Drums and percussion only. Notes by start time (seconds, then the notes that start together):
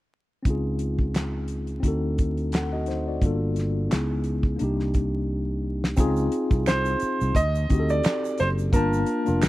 0.45 kick, closed hi-hat
0.79 closed hi-hat
0.99 kick
1.15 snare, clap, closed hi-hat
1.48 closed hi-hat
1.67 closed hi-hat
1.83 kick, closed hi-hat
2.18 kick, closed hi-hat
2.37 closed hi-hat
2.52 snare, clap, closed hi-hat
2.86 snare, closed hi-hat
3.22 kick, closed hi-hat
3.56 snare, closed hi-hat
3.91 snare, clap, closed hi-hat
4.24 closed hi-hat
4.43 kick
4.59 closed hi-hat
4.80 snare
4.94 kick, closed hi-hat
5.84 snare
5.97 kick, closed hi-hat, shaker
6.16 shaker
6.32 closed hi-hat
6.51 kick, shaker
6.66 finger snap, snare, clap, closed hi-hat, shaker
6.85 shaker
7.00 closed hi-hat, shaker
7.21 shaker
7.35 kick, closed hi-hat, shaker
7.55 shaker
7.70 kick, closed hi-hat, shaker
7.89 shaker
8.03 finger snap, snare, clap, closed hi-hat, shaker
8.25 shaker
8.38 snare, closed hi-hat, shaker
8.58 shaker
8.73 kick, closed hi-hat, shaker
8.93 shaker
9.06 closed hi-hat
9.26 closed hi-hat, shaker
9.42 finger snap, snare, clap, closed hi-hat, shaker